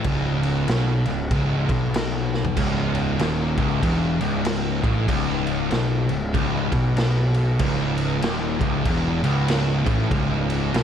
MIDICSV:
0, 0, Header, 1, 4, 480
1, 0, Start_track
1, 0, Key_signature, 4, "minor"
1, 0, Tempo, 628931
1, 40, Time_signature, 4, 2, 24, 8
1, 8265, End_track
2, 0, Start_track
2, 0, Title_t, "Distorted electric guitar"
2, 0, Program_c, 0, 30
2, 44, Note_on_c, 0, 37, 114
2, 516, Note_off_c, 0, 37, 0
2, 526, Note_on_c, 0, 47, 102
2, 804, Note_off_c, 0, 47, 0
2, 819, Note_on_c, 0, 37, 76
2, 966, Note_off_c, 0, 37, 0
2, 1005, Note_on_c, 0, 37, 103
2, 1301, Note_off_c, 0, 37, 0
2, 1301, Note_on_c, 0, 47, 105
2, 1960, Note_off_c, 0, 47, 0
2, 1966, Note_on_c, 0, 37, 112
2, 2437, Note_off_c, 0, 37, 0
2, 2446, Note_on_c, 0, 39, 107
2, 2724, Note_off_c, 0, 39, 0
2, 2740, Note_on_c, 0, 37, 111
2, 2919, Note_off_c, 0, 37, 0
2, 2923, Note_on_c, 0, 40, 110
2, 3202, Note_off_c, 0, 40, 0
2, 3212, Note_on_c, 0, 37, 102
2, 3682, Note_off_c, 0, 37, 0
2, 3695, Note_on_c, 0, 45, 97
2, 3876, Note_off_c, 0, 45, 0
2, 3889, Note_on_c, 0, 37, 109
2, 4358, Note_off_c, 0, 37, 0
2, 4366, Note_on_c, 0, 47, 110
2, 4644, Note_off_c, 0, 47, 0
2, 4655, Note_on_c, 0, 37, 77
2, 4804, Note_off_c, 0, 37, 0
2, 4840, Note_on_c, 0, 37, 106
2, 5121, Note_off_c, 0, 37, 0
2, 5129, Note_on_c, 0, 47, 101
2, 5793, Note_off_c, 0, 47, 0
2, 5801, Note_on_c, 0, 37, 109
2, 6274, Note_off_c, 0, 37, 0
2, 6278, Note_on_c, 0, 39, 114
2, 6559, Note_off_c, 0, 39, 0
2, 6566, Note_on_c, 0, 37, 114
2, 6751, Note_off_c, 0, 37, 0
2, 6762, Note_on_c, 0, 40, 108
2, 7041, Note_off_c, 0, 40, 0
2, 7048, Note_on_c, 0, 37, 113
2, 7519, Note_off_c, 0, 37, 0
2, 7522, Note_on_c, 0, 45, 98
2, 7709, Note_off_c, 0, 45, 0
2, 7714, Note_on_c, 0, 37, 112
2, 8190, Note_off_c, 0, 37, 0
2, 8197, Note_on_c, 0, 47, 113
2, 8265, Note_off_c, 0, 47, 0
2, 8265, End_track
3, 0, Start_track
3, 0, Title_t, "Picked electric bass"
3, 0, Program_c, 1, 34
3, 40, Note_on_c, 1, 25, 102
3, 490, Note_off_c, 1, 25, 0
3, 517, Note_on_c, 1, 35, 97
3, 788, Note_off_c, 1, 35, 0
3, 813, Note_on_c, 1, 25, 82
3, 988, Note_off_c, 1, 25, 0
3, 1000, Note_on_c, 1, 25, 92
3, 1269, Note_off_c, 1, 25, 0
3, 1291, Note_on_c, 1, 35, 98
3, 1930, Note_off_c, 1, 35, 0
3, 1959, Note_on_c, 1, 25, 96
3, 2409, Note_off_c, 1, 25, 0
3, 2436, Note_on_c, 1, 27, 95
3, 2707, Note_off_c, 1, 27, 0
3, 2729, Note_on_c, 1, 25, 97
3, 2905, Note_off_c, 1, 25, 0
3, 2922, Note_on_c, 1, 28, 96
3, 3190, Note_off_c, 1, 28, 0
3, 3209, Note_on_c, 1, 25, 100
3, 3658, Note_off_c, 1, 25, 0
3, 3691, Note_on_c, 1, 33, 90
3, 3867, Note_off_c, 1, 33, 0
3, 3877, Note_on_c, 1, 25, 96
3, 4327, Note_off_c, 1, 25, 0
3, 4358, Note_on_c, 1, 35, 98
3, 4628, Note_off_c, 1, 35, 0
3, 4657, Note_on_c, 1, 25, 80
3, 4830, Note_off_c, 1, 25, 0
3, 4841, Note_on_c, 1, 25, 91
3, 5110, Note_off_c, 1, 25, 0
3, 5128, Note_on_c, 1, 35, 96
3, 5767, Note_off_c, 1, 35, 0
3, 5795, Note_on_c, 1, 25, 97
3, 6246, Note_off_c, 1, 25, 0
3, 6280, Note_on_c, 1, 27, 99
3, 6549, Note_off_c, 1, 27, 0
3, 6571, Note_on_c, 1, 25, 105
3, 6746, Note_off_c, 1, 25, 0
3, 6761, Note_on_c, 1, 28, 99
3, 7029, Note_off_c, 1, 28, 0
3, 7045, Note_on_c, 1, 25, 108
3, 7496, Note_off_c, 1, 25, 0
3, 7527, Note_on_c, 1, 33, 93
3, 7704, Note_off_c, 1, 33, 0
3, 7719, Note_on_c, 1, 25, 102
3, 8168, Note_off_c, 1, 25, 0
3, 8199, Note_on_c, 1, 35, 98
3, 8265, Note_off_c, 1, 35, 0
3, 8265, End_track
4, 0, Start_track
4, 0, Title_t, "Drums"
4, 33, Note_on_c, 9, 49, 84
4, 38, Note_on_c, 9, 36, 110
4, 109, Note_off_c, 9, 49, 0
4, 114, Note_off_c, 9, 36, 0
4, 330, Note_on_c, 9, 49, 66
4, 406, Note_off_c, 9, 49, 0
4, 517, Note_on_c, 9, 49, 81
4, 530, Note_on_c, 9, 38, 108
4, 594, Note_off_c, 9, 49, 0
4, 607, Note_off_c, 9, 38, 0
4, 805, Note_on_c, 9, 49, 60
4, 881, Note_off_c, 9, 49, 0
4, 998, Note_on_c, 9, 49, 84
4, 999, Note_on_c, 9, 36, 110
4, 1075, Note_off_c, 9, 49, 0
4, 1076, Note_off_c, 9, 36, 0
4, 1290, Note_on_c, 9, 36, 111
4, 1292, Note_on_c, 9, 49, 69
4, 1367, Note_off_c, 9, 36, 0
4, 1369, Note_off_c, 9, 49, 0
4, 1482, Note_on_c, 9, 49, 93
4, 1495, Note_on_c, 9, 38, 126
4, 1558, Note_off_c, 9, 49, 0
4, 1571, Note_off_c, 9, 38, 0
4, 1787, Note_on_c, 9, 38, 61
4, 1863, Note_off_c, 9, 38, 0
4, 1868, Note_on_c, 9, 43, 94
4, 1944, Note_off_c, 9, 43, 0
4, 1960, Note_on_c, 9, 36, 116
4, 1960, Note_on_c, 9, 49, 91
4, 1960, Note_on_c, 9, 57, 106
4, 2036, Note_off_c, 9, 36, 0
4, 2037, Note_off_c, 9, 49, 0
4, 2037, Note_off_c, 9, 57, 0
4, 2249, Note_on_c, 9, 49, 68
4, 2325, Note_off_c, 9, 49, 0
4, 2437, Note_on_c, 9, 49, 91
4, 2450, Note_on_c, 9, 38, 114
4, 2514, Note_off_c, 9, 49, 0
4, 2527, Note_off_c, 9, 38, 0
4, 2729, Note_on_c, 9, 49, 71
4, 2730, Note_on_c, 9, 36, 116
4, 2805, Note_off_c, 9, 49, 0
4, 2806, Note_off_c, 9, 36, 0
4, 2920, Note_on_c, 9, 36, 115
4, 2922, Note_on_c, 9, 49, 89
4, 2997, Note_off_c, 9, 36, 0
4, 2998, Note_off_c, 9, 49, 0
4, 3210, Note_on_c, 9, 49, 65
4, 3286, Note_off_c, 9, 49, 0
4, 3395, Note_on_c, 9, 49, 94
4, 3408, Note_on_c, 9, 38, 124
4, 3471, Note_off_c, 9, 49, 0
4, 3484, Note_off_c, 9, 38, 0
4, 3691, Note_on_c, 9, 36, 109
4, 3694, Note_on_c, 9, 49, 62
4, 3767, Note_off_c, 9, 36, 0
4, 3771, Note_off_c, 9, 49, 0
4, 3880, Note_on_c, 9, 36, 113
4, 3882, Note_on_c, 9, 49, 94
4, 3956, Note_off_c, 9, 36, 0
4, 3958, Note_off_c, 9, 49, 0
4, 4173, Note_on_c, 9, 49, 65
4, 4249, Note_off_c, 9, 49, 0
4, 4356, Note_on_c, 9, 49, 76
4, 4369, Note_on_c, 9, 38, 107
4, 4432, Note_off_c, 9, 49, 0
4, 4445, Note_off_c, 9, 38, 0
4, 4647, Note_on_c, 9, 49, 61
4, 4723, Note_off_c, 9, 49, 0
4, 4839, Note_on_c, 9, 36, 110
4, 4842, Note_on_c, 9, 49, 83
4, 4916, Note_off_c, 9, 36, 0
4, 4919, Note_off_c, 9, 49, 0
4, 5130, Note_on_c, 9, 36, 119
4, 5132, Note_on_c, 9, 49, 63
4, 5206, Note_off_c, 9, 36, 0
4, 5209, Note_off_c, 9, 49, 0
4, 5316, Note_on_c, 9, 49, 90
4, 5329, Note_on_c, 9, 38, 126
4, 5393, Note_off_c, 9, 49, 0
4, 5406, Note_off_c, 9, 38, 0
4, 5605, Note_on_c, 9, 49, 60
4, 5681, Note_off_c, 9, 49, 0
4, 5795, Note_on_c, 9, 49, 97
4, 5798, Note_on_c, 9, 36, 116
4, 5871, Note_off_c, 9, 49, 0
4, 5874, Note_off_c, 9, 36, 0
4, 6087, Note_on_c, 9, 49, 68
4, 6163, Note_off_c, 9, 49, 0
4, 6276, Note_on_c, 9, 49, 89
4, 6289, Note_on_c, 9, 38, 105
4, 6352, Note_off_c, 9, 49, 0
4, 6365, Note_off_c, 9, 38, 0
4, 6569, Note_on_c, 9, 36, 113
4, 6573, Note_on_c, 9, 49, 69
4, 6646, Note_off_c, 9, 36, 0
4, 6649, Note_off_c, 9, 49, 0
4, 6757, Note_on_c, 9, 49, 93
4, 6758, Note_on_c, 9, 36, 118
4, 6833, Note_off_c, 9, 49, 0
4, 6835, Note_off_c, 9, 36, 0
4, 7050, Note_on_c, 9, 49, 75
4, 7126, Note_off_c, 9, 49, 0
4, 7237, Note_on_c, 9, 49, 103
4, 7250, Note_on_c, 9, 38, 127
4, 7313, Note_off_c, 9, 49, 0
4, 7326, Note_off_c, 9, 38, 0
4, 7529, Note_on_c, 9, 36, 113
4, 7531, Note_on_c, 9, 49, 65
4, 7605, Note_off_c, 9, 36, 0
4, 7607, Note_off_c, 9, 49, 0
4, 7718, Note_on_c, 9, 36, 124
4, 7718, Note_on_c, 9, 49, 86
4, 7794, Note_off_c, 9, 36, 0
4, 7794, Note_off_c, 9, 49, 0
4, 8013, Note_on_c, 9, 49, 70
4, 8089, Note_off_c, 9, 49, 0
4, 8199, Note_on_c, 9, 49, 87
4, 8212, Note_on_c, 9, 38, 122
4, 8265, Note_off_c, 9, 38, 0
4, 8265, Note_off_c, 9, 49, 0
4, 8265, End_track
0, 0, End_of_file